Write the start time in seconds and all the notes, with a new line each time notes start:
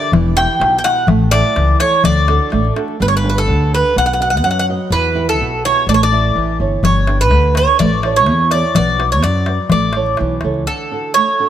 Already playing: D3 D5
0.02 darbuka tek
0.12 E1 E3, darbuka dum
0.36 E4 G4 G5, darbuka tek
0.49 darbuka tek
0.60 B1 B2, darbuka tek
0.79 G5
0.84 E4 F#4 G4 F#5, darbuka tek
0.97 darbuka tek
1.07 A1 A3, darbuka dum
1.31 E4 A4 D5 E5, darbuka tek
1.45 darbuka tek
1.56 C#2 E3, darbuka tek
1.80 E4 A4 C#5, darbuka tek
2.04 D2 D3 D5, darbuka dum
2.17 darbuka tek
2.28 D4 F#4 A4, darbuka tek
2.52 A1 A3, darbuka tek
2.65 darbuka tek
2.76 D4 F#4 A4, darbuka tek
2.88 darbuka tek
3.00 G1 G3 B4
3.08 C#5
3.17 B4
3.24 D4 G4 B4
3.30 B4
3.38 A4
3.48 D2 D3
3.72 D4 G4 B4
3.96 B1 B3 F#5
4.06 F#5
4.13 F#5
4.20 F#4 B4 D#5 F#5
4.30 F#5
4.37 F#5
4.43 F#2 F#3 F#5
4.51 F#5
4.59 F#5
4.69 F#4 B4 D#5
4.90 E2 E3 B4
5.15 E4 G4 B4
5.29 A4
5.38 B1 B2
5.65 E4 G4 B4 C#5
5.87 A1 A3 D5
5.94 C#5
6.03 D5
6.12 E4 A4 E5
6.35 A1 E3
6.60 G1 E4 A4 C#5
6.83 G1 G3 C#5, darbuka dum
7.07 D4 G4 B4, darbuka tek
7.21 B4
7.31 D2 D3, darbuka tek
7.44 darbuka tek
7.55 D4 G4 B4 C#5, darbuka tek
7.79 A1 A3 D5, darbuka dum
8.03 E4 A4 C#5, darbuka tek
8.16 C#5
8.26 E2 E3, darbuka tek
8.39 darbuka tek
8.51 E4 A4 C#5 D5, darbuka tek
8.75 B1 B3 D5, darbuka dum
8.99 F#4 B4 D5, darbuka tek
9.12 C#5
9.23 F#2 F#3 D5, darbuka tek
9.35 darbuka tek
9.46 F#4 B4 D5, darbuka tek
9.69 A1 A3 D5, darbuka dum
9.82 darbuka tek
9.93 E4 A4 C#5, darbuka tek
10.06 darbuka tek
10.17 B1 E3, darbuka tek
10.41 C#2 E4 A4 C#5, darbuka tek
10.54 darbuka tek
10.67 D3 A4
10.91 D4 F#4 A4
11.14 A3 C#5
11.40 D4 F#4 A4